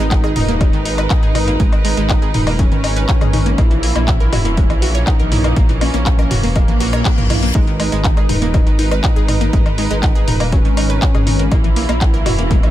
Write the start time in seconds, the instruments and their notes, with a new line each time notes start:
Already playing: string section G#3 D#4 A#4 B4, analog synth lead D#4
0.00 detuned saw bass G#1
0.11 kick, clap, closed hi-hat
0.24 synth arpeggio sound G#4, closed hi-hat, low woodblock
0.36 detuned saw bass D#1, synth arpeggio sound D#4, mid tom, open hi-hat
0.48 synth arpeggio sound A#3, closed hi-hat
0.61 synth arpeggio sound F#3, kick, closed hi-hat, low woodblock
0.73 detuned saw bass G#1, synth arpeggio sound D#3, closed hi-hat
0.85 synth arpeggio sound D#4, open hi-hat
0.98 synth arpeggio sound B4, closed hi-hat, low woodblock
1.10 analog synth lead D#4, kick, clap, closed hi-hat
1.23 detuned saw bass G#1, synth arpeggio sound G#4, closed hi-hat
1.35 synth arpeggio sound D#4, mid tom, open hi-hat, low woodblock
1.48 synth arpeggio sound A#3, closed hi-hat
1.60 detuned saw bass G#1, synth arpeggio sound G#3, kick, closed hi-hat
1.72 synth arpeggio sound D#3, closed hi-hat, low woodblock
1.85 synth arpeggio sound G#3, analog synth lead D#4, open hi-hat
1.97 detuned saw bass G#1, synth arpeggio sound G#3, closed hi-hat
2.09 kick, clap, closed hi-hat, low woodblock
2.22 synth arpeggio sound G#4, closed hi-hat
2.34 detuned saw bass D#1, synth arpeggio sound D#4, mid tom, open hi-hat
2.47 synth arpeggio sound A#3, open hi-hat, low woodblock
2.59 synth arpeggio sound F#3, analog synth lead C#4, kick, closed hi-hat
2.72 detuned saw bass G#1, synth arpeggio sound D#3, closed hi-hat
2.84 synth arpeggio sound D#4, open hi-hat, low woodblock
2.96 synth arpeggio sound B4, closed hi-hat
3.09 kick, clap, closed hi-hat
3.21 detuned saw bass G#1, synth arpeggio sound G#4, closed hi-hat, mid tom, low woodblock
3.33 synth arpeggio sound D#4, mid tom, open hi-hat
3.46 synth arpeggio sound A#3, closed hi-hat
3.58 detuned saw bass A#1, string section E3 A#3 C#4, synth arpeggio sound A#3, analog synth lead E4, kick, closed hi-hat, low woodblock
3.71 synth arpeggio sound E3, closed hi-hat
3.83 synth arpeggio sound A#3, open hi-hat
3.96 detuned saw bass A#1, synth arpeggio sound A#3, closed hi-hat, low woodblock
4.08 kick, clap, closed hi-hat
4.20 synth arpeggio sound A#4, closed hi-hat
4.33 detuned saw bass E1, synth arpeggio sound F#4, mid tom, open hi-hat, low woodblock
4.45 synth arpeggio sound A#3, closed hi-hat
4.57 synth arpeggio sound G#3, kick, closed hi-hat
4.70 detuned saw bass A#1, synth arpeggio sound E3, closed hi-hat, low woodblock
4.82 synth arpeggio sound F#4, open hi-hat
4.95 synth arpeggio sound C#5, closed hi-hat
5.07 analog synth lead D#4, kick, clap, closed hi-hat, low woodblock
5.20 detuned saw bass A#1, synth arpeggio sound A#4, closed hi-hat
5.32 synth arpeggio sound E4, mid tom, open hi-hat
5.44 synth arpeggio sound A#3, closed hi-hat, low woodblock
5.56 detuned saw bass A#1, synth arpeggio sound A#3, kick, closed hi-hat
5.69 synth arpeggio sound E3, closed hi-hat
5.81 synth arpeggio sound A#3, analog synth lead C#4, open hi-hat, low woodblock
5.94 detuned saw bass A#1, synth arpeggio sound A#3, closed hi-hat
6.06 kick, clap, closed hi-hat
6.19 synth arpeggio sound A#4, closed hi-hat, low woodblock
6.31 detuned saw bass E1, synth arpeggio sound F#4, mid tom, open hi-hat
6.43 synth arpeggio sound A#3, open hi-hat
6.56 synth arpeggio sound G#3, analog synth lead A#3, kick, closed hi-hat, reverse cymbal, low woodblock
6.68 detuned saw bass A#1, synth arpeggio sound E3, closed hi-hat
6.80 synth arpeggio sound F#4, open hi-hat
6.93 synth arpeggio sound C#5, closed hi-hat, low woodblock
7.05 kick, clap, closed hi-hat
7.18 detuned saw bass A#1, synth arpeggio sound A#4, closed hi-hat, mid tom
7.30 synth arpeggio sound E4, mid tom, open hi-hat, low woodblock
7.43 synth arpeggio sound A#3, closed hi-hat
7.55 detuned saw bass G#1, synth arpeggio sound G#3, string section G#3 D#4 A#4 B4, analog synth lead D#4, kick, closed hi-hat
7.67 synth arpeggio sound D#3, closed hi-hat
7.80 synth arpeggio sound G#3, open hi-hat, low woodblock
7.92 detuned saw bass G#1, synth arpeggio sound G#3, closed hi-hat
8.04 kick, clap, closed hi-hat
8.17 synth arpeggio sound G#4, closed hi-hat, low woodblock
8.29 detuned saw bass D#1, synth arpeggio sound D#4, mid tom, open hi-hat
8.42 synth arpeggio sound A#3, closed hi-hat
8.54 synth arpeggio sound F#3, kick, closed hi-hat, low woodblock
8.67 detuned saw bass G#1, synth arpeggio sound D#3, closed hi-hat
8.79 synth arpeggio sound D#4, open hi-hat
8.91 synth arpeggio sound B4, closed hi-hat, low woodblock
9.04 analog synth lead D#4, kick, clap, closed hi-hat
9.16 detuned saw bass G#1, synth arpeggio sound G#4, closed hi-hat
9.28 synth arpeggio sound D#4, mid tom, open hi-hat, low woodblock
9.41 synth arpeggio sound A#3, closed hi-hat
9.53 detuned saw bass G#1, synth arpeggio sound G#3, kick, closed hi-hat
9.66 synth arpeggio sound D#3, closed hi-hat, low woodblock
9.78 synth arpeggio sound G#3, analog synth lead D#4, open hi-hat
9.91 detuned saw bass G#1, synth arpeggio sound G#3, closed hi-hat
10.03 kick, clap, closed hi-hat, low woodblock
10.15 synth arpeggio sound G#4, closed hi-hat
10.28 detuned saw bass D#1, synth arpeggio sound D#4, mid tom, open hi-hat
10.40 synth arpeggio sound A#3, open hi-hat, low woodblock
10.52 synth arpeggio sound F#3, analog synth lead C#4, kick, closed hi-hat
10.65 detuned saw bass G#1, synth arpeggio sound D#3, closed hi-hat
10.77 synth arpeggio sound D#4, open hi-hat, low woodblock
10.90 synth arpeggio sound B4, closed hi-hat
11.02 kick, clap, closed hi-hat
11.15 detuned saw bass G#1, synth arpeggio sound G#4, closed hi-hat, mid tom, low woodblock
11.27 synth arpeggio sound D#4, mid tom, open hi-hat
11.39 synth arpeggio sound A#3, closed hi-hat
11.51 detuned saw bass A#1, string section E3 A#3 C#4, synth arpeggio sound A#3, analog synth lead E4, kick, closed hi-hat, low woodblock
11.64 synth arpeggio sound E3, closed hi-hat
11.76 synth arpeggio sound A#3, open hi-hat
11.89 detuned saw bass A#1, synth arpeggio sound A#3, closed hi-hat, low woodblock
12.01 kick, clap, closed hi-hat
12.14 synth arpeggio sound A#4, closed hi-hat
12.26 detuned saw bass E1, synth arpeggio sound F#4, mid tom, open hi-hat, low woodblock
12.39 synth arpeggio sound A#3, closed hi-hat
12.51 synth arpeggio sound G#3, kick, closed hi-hat
12.63 detuned saw bass A#1, synth arpeggio sound E3, closed hi-hat, low woodblock